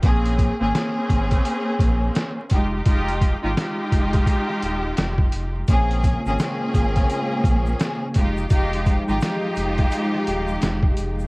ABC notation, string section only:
X:1
M:4/4
L:1/16
Q:"Swing 16ths" 1/4=85
K:Bbdor
V:1 name="String section"
[B,CDA]3 [B,CDA] [B,CDA]8- [B,CDA] z [A,EFG]2 | [A,EFG]3 [A,EFG] [A,EFG]8- [A,EFG]3 z | [B,CDA]3 [B,CDA] [B,CDA]8- [B,CDA] z [A,EFG]2 | [A,EFG]3 [A,EFG] [A,EFG]8- [A,EFG]3 z |]